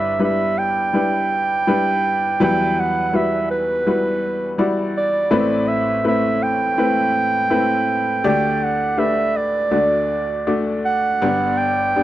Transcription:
0.00 2.37 G1 soft
0.00 2.37 G2 soft
0.00 0.19 G3 medium
0.00 0.19 D4 medium
0.00 0.20 E4 medium
0.00 0.20 B4 medium
0.00 0.21 E5 medium
0.19 0.78 G3 medium
0.19 0.78 D4 soft
0.19 0.78 E4 soft
0.19 0.78 B4 medium
0.24 0.60 E5 medium
0.58 2.42 G5 medium
0.93 1.52 G3 medium
0.93 1.52 D4 soft
0.93 1.52 E4 medium
0.93 1.53 B4 medium
1.67 2.26 G3 medium
1.67 2.26 D4 medium
1.67 2.25 E4 medium
1.67 2.26 B4 medium
2.40 5.28 E2 medium
2.40 5.28 E3 medium
2.40 2.98 F#3 medium
2.40 2.98 G3 medium
2.40 2.98 E4 medium
2.40 2.98 B4 medium
2.40 2.81 G5 medium
2.80 3.17 F#5 medium
3.13 3.71 G3 medium
3.13 3.71 E4 soft
3.13 3.71 F#4 medium
3.13 3.71 B4 medium
3.13 3.50 E5 medium
3.51 4.66 B4 medium
3.87 4.44 G3 medium
3.87 4.44 E4 medium
3.87 4.44 F#4 medium
3.87 4.44 B4 medium
4.58 5.16 G3 medium
4.58 5.16 E4 medium
4.58 5.17 F#4 medium
4.58 5.16 D5 medium
4.97 5.69 D5 medium
5.31 8.20 A1 medium
5.31 8.20 A2 medium
5.31 5.89 A3 medium
5.31 5.89 C4 medium
5.31 5.89 E4 medium
5.31 5.89 B4 medium
5.68 6.05 E5 medium
6.04 6.63 A3 medium
6.04 6.63 C4 medium
6.04 6.63 E4 medium
6.04 6.63 B4 medium
6.04 6.44 E5 medium
6.43 8.25 G5 medium
6.78 7.36 A3 medium
6.78 7.36 C4 medium
6.78 7.36 E4 medium
6.78 7.36 B4 medium
7.50 8.09 A3 medium
7.50 8.09 C4 medium
7.50 8.09 E4 medium
7.50 8.09 B4 medium
8.24 9.68 D2 soft
8.24 9.68 D3 medium
8.24 8.83 A3 medium
8.24 8.83 D4 medium
8.24 8.83 G4 medium
8.24 8.83 D5 medium
8.28 8.65 G5 medium
8.63 9.00 F#5 medium
8.97 9.56 A3 medium
8.97 9.56 D4 soft
8.97 9.56 G4 soft
8.97 9.56 B4 medium
8.97 9.38 E5 medium
9.37 10.57 D5 medium
9.71 11.16 D2 soft
9.71 11.16 D3 soft
9.71 10.30 A3 medium
9.71 10.30 D4 medium
9.71 10.30 F#4 medium
9.71 10.30 D5 medium
10.47 11.05 A3 medium
10.47 11.05 D4 medium
10.47 11.05 F#4 medium
10.47 11.05 D5 medium
10.85 11.59 F#5 medium
11.22 12.03 G1 medium
11.22 12.03 G2 medium
11.22 11.79 B3 medium
11.22 11.79 D4 medium
11.22 11.79 G4 medium
11.22 11.79 D5 medium
11.58 12.03 G5 medium
11.96 12.03 B3 medium
11.96 12.03 D4 medium
11.96 12.03 G4 soft
11.96 12.03 D5 medium

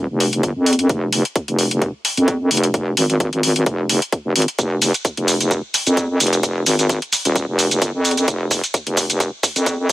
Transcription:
0.10 0.42 F1 medium
0.20 open hi-hat loud
0.33 closed hi-hat medium
0.43 0.54 G1 medium
0.43 kick loud
0.43 closed hi-hat medium
0.56 0.88 F2 medium
0.66 open hi-hat loud
0.73 closed hi-hat medium
0.79 closed hi-hat soft
0.89 1.23 F1 medium
0.89 kick loud
0.89 closed hi-hat medium
1.13 open hi-hat loud
1.25 closed hi-hat soft
1.36 kick loud
1.36 closed hi-hat medium
1.48 1.92 F1 medium
1.48 closed hi-hat soft
1.59 open hi-hat loud
1.71 closed hi-hat medium
1.82 kick loud
1.82 closed hi-hat soft
2.05 open hi-hat loud
2.17 2.49 F2 medium
2.17 closed hi-hat soft
2.28 kick loud
2.28 closed hi-hat medium
2.51 2.95 F1 medium
2.51 open hi-hat loud
2.57 closed hi-hat medium
2.64 closed hi-hat medium
2.74 kick loud
2.74 closed hi-hat medium
2.97 3.31 G#1 medium
2.97 open hi-hat loud
3.10 closed hi-hat soft
3.20 kick loud
3.20 closed hi-hat medium
3.33 3.65 G#1 medium
3.33 closed hi-hat soft
3.43 open hi-hat loud
3.56 closed hi-hat medium
3.66 4.00 F1 loud
3.66 kick loud
3.66 closed hi-hat soft
3.89 open hi-hat loud
4.02 closed hi-hat soft
4.12 kick loud
4.12 closed hi-hat medium
4.25 4.34 F1 medium
4.36 4.46 G#1 loud
4.36 open hi-hat loud
4.42 closed hi-hat medium
4.48 closed hi-hat soft
4.59 4.92 F1 medium
4.59 kick loud
4.59 closed hi-hat medium
4.59 shaker soft
4.82 open hi-hat loud
4.82 shaker medium
4.94 closed hi-hat medium
4.94 shaker soft
5.05 kick loud
5.05 closed hi-hat medium
5.05 shaker soft
5.17 5.62 F1 medium
5.17 closed hi-hat soft
5.28 open hi-hat loud
5.28 shaker medium
5.41 closed hi-hat medium
5.41 shaker soft
5.51 kick loud
5.51 closed hi-hat soft
5.51 shaker soft
5.74 open hi-hat loud
5.74 shaker medium
5.87 6.19 F2 loud
5.87 closed hi-hat soft
5.87 shaker soft
5.97 kick loud
5.97 closed hi-hat medium
5.97 shaker soft
6.20 6.65 F1 medium
6.20 open hi-hat loud
6.20 shaker medium
6.27 closed hi-hat medium
6.33 closed hi-hat soft
6.33 shaker soft
6.43 kick loud
6.43 closed hi-hat medium
6.43 shaker soft
6.66 7.00 G#1 medium
6.66 open hi-hat loud
6.66 shaker medium
6.79 closed hi-hat soft
6.79 shaker soft
6.89 kick loud
6.89 closed hi-hat medium
6.89 shaker soft
7.02 closed hi-hat soft
7.13 open hi-hat loud
7.13 shaker medium
7.25 7.46 D#1 loud
7.25 closed hi-hat medium
7.25 shaker soft
7.36 kick loud
7.36 closed hi-hat medium
7.36 shaker soft
7.48 7.80 F1 loud
7.59 open hi-hat loud
7.59 shaker medium
7.71 closed hi-hat medium
7.71 shaker soft
7.82 7.92 G1 loud
7.82 kick loud
7.82 closed hi-hat medium
7.82 shaker soft
7.94 8.26 F2 medium
8.05 open hi-hat loud
8.05 shaker medium
8.11 closed hi-hat medium
8.17 closed hi-hat medium
8.17 shaker soft
8.28 8.62 F1 medium
8.28 kick loud
8.28 closed hi-hat medium
8.28 shaker soft
8.51 kick loud
8.51 open hi-hat loud
8.51 shaker medium
8.64 closed hi-hat medium
8.64 shaker soft
8.74 kick loud
8.74 closed hi-hat medium
8.74 shaker soft
8.87 9.31 F1 medium
8.87 closed hi-hat soft
8.97 kick loud
8.97 open hi-hat loud
8.97 shaker medium
9.10 closed hi-hat medium
9.10 shaker soft
9.20 kick loud
9.20 closed hi-hat medium
9.20 shaker soft
9.43 kick loud
9.43 open hi-hat loud
9.43 shaker medium
9.56 9.88 F2 loud
9.56 closed hi-hat medium
9.56 shaker soft
9.66 kick loud
9.66 closed hi-hat medium
9.66 shaker soft

